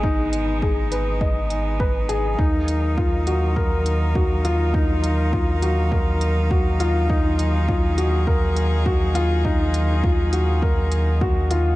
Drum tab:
HH |-x-x-x-x|-x-x-x-x|-x-x-x-x|-x-x-x-x|
BD |o-o-o-o-|o-o-o-o-|o-o-o-o-|o-o-o-o-|

HH |-x-x-x-x|
BD |o-o-o-o-|